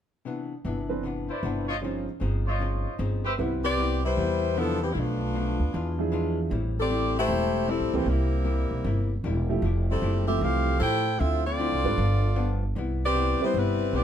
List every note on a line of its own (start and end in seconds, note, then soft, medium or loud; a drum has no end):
0.25 0.52 C3 soft
0.25 0.53 E3 soft
0.25 0.53 B3 medium
0.25 0.54 D4 soft
0.65 1.28 G1 medium
0.65 0.92 C3 medium
0.65 0.92 E3 medium
0.65 0.92 B3 medium
0.65 0.93 D4 medium
0.89 1.02 E3 medium
0.89 1.02 C4 soft
0.89 1.02 D4 soft
0.89 1.02 B4 medium
1.03 1.30 C3 soft
1.03 1.31 E3 soft
1.03 1.32 B3 medium
1.03 1.32 D4 medium
1.29 1.66 E4 medium
1.29 1.66 B4 medium
1.29 1.66 C5 medium
1.29 1.66 D5 medium
1.43 2.06 G1 medium
1.43 1.70 C3 medium
1.43 1.70 E3 medium
1.43 1.70 B3 medium
1.43 1.71 D4 medium
1.67 1.77 F4 medium
1.67 1.77 C5 medium
1.67 1.77 C#5 medium
1.67 1.77 D#5 medium
1.82 2.09 C#3 soft
1.82 2.05 F3 soft
1.82 2.10 F3 soft
1.82 2.10 C4 soft
1.82 2.05 C#4 soft
1.82 2.05 D#4 soft
1.82 2.10 D#4 soft
1.82 2.05 C5 medium
2.20 2.84 G1 medium
2.20 2.47 C#3 medium
2.20 2.48 F3 medium
2.20 2.48 C4 medium
2.20 2.49 D#4 medium
2.46 2.96 F4 medium
2.46 2.96 C5 medium
2.46 2.96 C#5 medium
2.46 2.97 D#5 medium
2.60 2.87 C#3 soft
2.60 2.87 F3 soft
2.60 2.88 C4 medium
2.60 2.88 D#4 soft
2.99 3.36 G1 medium
2.99 3.26 C#3 medium
2.99 3.26 F3 medium
2.99 3.26 C4 medium
2.99 3.27 D#4 medium
3.25 3.34 G4 medium
3.25 3.34 B4 medium
3.25 3.34 C5 medium
3.25 3.34 E5 medium
3.38 4.13 C2 medium
3.38 3.65 C3 soft
3.38 3.61 G3 medium
3.38 3.66 G3 soft
3.38 3.66 B3 soft
3.38 3.61 C4 soft
3.38 3.62 E4 soft
3.38 3.66 E4 medium
3.38 3.62 B4 medium
3.64 4.00 C4 medium
3.64 4.00 G4 medium
3.64 4.01 B4 medium
3.64 4.01 D5 loud
3.77 4.04 C3 medium
3.77 4.05 G3 medium
3.77 4.05 B3 medium
3.77 4.05 E4 medium
4.05 4.57 G3 medium
4.05 4.57 E4 medium
4.05 4.57 B4 loud
4.05 4.57 C5 loud
4.17 4.91 E2 medium
4.17 4.43 C3 soft
4.17 4.44 G3 soft
4.17 4.44 B3 soft
4.17 4.45 E4 medium
4.56 4.83 C3 medium
4.56 4.82 F3 medium
4.56 4.83 G3 medium
4.56 4.83 B3 medium
4.56 4.82 B3 medium
4.56 4.82 D4 medium
4.56 4.83 E4 medium
4.56 4.82 A4 loud
4.82 4.90 E3 medium
4.82 4.90 B3 medium
4.82 4.90 C4 medium
4.82 4.90 G4 medium
4.93 5.55 B1 medium
4.93 5.21 B2 soft
4.93 5.22 F3 soft
4.93 4.96 E4 medium
4.97 5.23 A3 soft
4.97 5.75 A3 medium
4.97 6.14 B3 medium
4.97 5.23 D4 soft
4.97 6.14 D4 medium
4.97 6.14 F4 medium
5.34 5.61 B2 soft
5.34 5.61 F3 medium
5.34 5.62 A3 medium
5.34 5.62 D4 medium
5.59 5.72 D2 medium
5.73 6.48 E2 medium
5.73 5.99 E3 soft
5.73 6.00 G#3 medium
5.73 6.00 D4 medium
5.73 6.01 F4 medium
5.99 6.48 F3 medium
5.99 6.48 D4 medium
5.99 6.49 E4 medium
5.99 6.49 G#4 medium
6.12 6.39 E3 medium
6.12 6.39 G#3 medium
6.12 6.39 D4 medium
6.12 6.40 F4 medium
6.50 7.25 A1 medium
6.50 6.77 A2 soft
6.50 6.78 G3 medium
6.50 6.78 C4 medium
6.50 6.79 E4 medium
6.80 7.15 C4 medium
6.80 7.15 G4 medium
6.80 7.15 A4 medium
6.80 7.15 D5 loud
6.89 7.16 A2 soft
6.89 7.17 G3 medium
6.89 7.17 C4 medium
6.89 7.17 E4 medium
7.19 7.67 A3 medium
7.19 7.67 E4 medium
7.19 7.67 G4 medium
7.19 7.66 C5 loud
7.27 7.77 E1 medium
7.27 7.55 A2 soft
7.27 7.55 G3 soft
7.27 7.56 C4 soft
7.27 7.57 E4 medium
7.67 7.94 A2 medium
7.67 7.95 G3 medium
7.67 7.94 G3 medium
7.67 7.95 C4 medium
7.67 7.94 C4 medium
7.67 7.95 E4 medium
7.67 7.94 A4 medium
7.80 7.93 A1 medium
7.93 8.05 C#2 medium
7.93 8.06 E3 medium
7.93 8.09 E3 medium
7.93 8.09 A3 medium
7.93 8.06 A#3 medium
7.93 8.06 C4 medium
7.93 8.07 C4 medium
7.93 8.06 G4 medium
7.93 8.09 G4 medium
8.06 8.67 C2 medium
8.06 8.33 C3 soft
8.06 8.34 G3 soft
8.06 9.25 G3 medium
8.06 9.25 A#3 medium
8.06 8.35 A#3 soft
8.06 9.25 C4 medium
8.06 9.25 E4 medium
8.06 8.35 E4 soft
8.44 8.72 C3 medium
8.44 8.72 G3 medium
8.44 8.73 A#3 medium
8.44 8.73 E4 medium
8.71 8.84 B1 medium
8.84 9.21 G1 medium
8.84 9.12 C3 medium
8.84 9.12 G3 medium
8.84 9.13 A#3 medium
8.84 9.13 E4 medium
9.24 9.60 E1 medium
9.24 9.51 C3 medium
9.24 9.51 G3 medium
9.24 9.52 A#3 medium
9.24 9.52 E4 medium
9.49 9.62 F3 medium
9.49 9.62 A3 medium
9.49 9.62 E4 medium
9.49 9.63 G4 medium
9.62 9.99 F1 medium
9.62 9.90 F3 soft
9.62 9.91 A3 soft
9.62 9.91 E4 medium
9.62 9.91 G4 soft
9.90 10.26 G3 medium
9.90 10.26 C4 medium
9.90 10.26 E4 medium
9.90 10.26 A4 medium
10.02 10.39 F#1 medium
10.02 10.29 F3 medium
10.02 10.29 A3 medium
10.02 10.30 E4 medium
10.02 10.30 G4 medium
10.27 10.78 E3 medium
10.27 10.78 F3 medium
10.27 10.78 A3 soft
10.27 10.40 C4 medium
10.27 10.41 G4 medium
10.27 10.78 G4 medium
10.27 10.40 A4 medium
10.27 10.40 E5 medium
10.41 10.78 C2 medium
10.41 10.68 F3 soft
10.41 10.69 A3 soft
10.41 10.81 C4 medium
10.41 10.70 E4 soft
10.41 10.81 G4 medium
10.41 10.70 G4 soft
10.41 10.78 A4 medium
10.41 10.81 F5 loud
10.79 11.17 A2 medium
10.79 11.06 F3 soft
10.79 11.07 A3 medium
10.79 11.17 E4 medium
10.79 11.07 E4 medium
10.79 11.08 G4 medium
10.79 11.16 A4 loud
10.79 11.17 C5 medium
10.79 11.16 G5 loud
11.18 11.68 D2 medium
11.18 11.46 D3 soft
11.18 11.47 F3 medium
11.18 11.44 C4 medium
11.18 11.47 C4 soft
11.18 11.47 E4 soft
11.18 11.44 F4 medium
11.18 11.44 A4 medium
11.18 11.44 E5 loud
11.45 11.94 C4 medium
11.45 12.58 F4 medium
11.45 12.58 A4 medium
11.45 12.58 D5 loud
11.58 11.85 D3 medium
11.58 11.86 F3 medium
11.58 11.86 C4 medium
11.58 11.86 E4 medium
11.72 11.84 C2 medium
11.84 11.97 G#1 medium
11.84 11.97 G3 medium
11.84 11.97 D4 medium
11.84 11.97 F4 medium
11.84 11.97 B4 medium
11.96 12.72 G1 medium
11.96 12.24 G2 soft
11.96 12.25 F3 medium
11.96 12.25 B3 medium
11.96 12.26 D4 medium
12.35 12.63 G2 medium
12.35 12.63 F3 medium
12.35 12.63 B3 medium
12.35 12.64 D4 medium
12.75 13.37 C2 medium
12.75 13.02 C3 soft
12.75 13.03 G3 medium
12.75 13.04 B3 medium
12.75 13.04 E4 medium
13.05 13.40 C4 medium
13.05 13.40 G4 loud
13.05 13.40 B4 medium
13.05 13.40 D5 loud
13.14 13.41 C3 medium
13.14 13.42 G3 medium
13.14 13.42 B3 medium
13.14 13.43 E4 medium
13.40 13.53 G3 medium
13.40 13.55 G3 medium
13.40 13.55 B3 medium
13.40 13.53 C4 medium
13.40 13.54 E4 medium
13.40 13.55 E4 medium
13.40 13.53 B4 medium
13.40 13.55 C5 loud
13.40 muted upright bass stroke soft
13.54 13.91 G1 medium
13.54 13.81 C3 soft
13.54 13.82 G3 soft
13.54 13.95 G3 medium
13.54 13.82 B3 medium
13.54 13.83 E4 medium
13.54 13.95 E4 medium
13.54 13.94 B4 medium
13.58 13.94 C4 medium
13.93 14.04 B1 medium
13.93 14.04 C3 medium
13.93 14.04 G3 medium
13.93 14.04 B3 medium
13.93 14.04 C4 medium
13.93 14.04 E4 medium
13.93 14.04 G4 medium
13.93 14.04 B4 medium
13.93 14.04 D5 loud